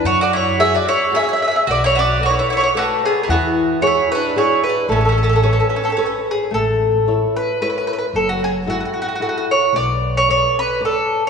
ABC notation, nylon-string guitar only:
X:1
M:3/4
L:1/8
Q:"Swing" 1/4=112
K:A
V:1 name="Nylon-string guitar"
F,2 [FGc]2 [FGc]2 | B,2 [ABd]2 [ABd]2 | E,2 [EFG]2 [EFG]2 | A,2 [ABc]2 [ABc]2 |
A,2 [EAc]2 [EAc]2 | F,2 [EFA]2 [EFA]2 | B,2 [ABd]2 [ABd]2 |]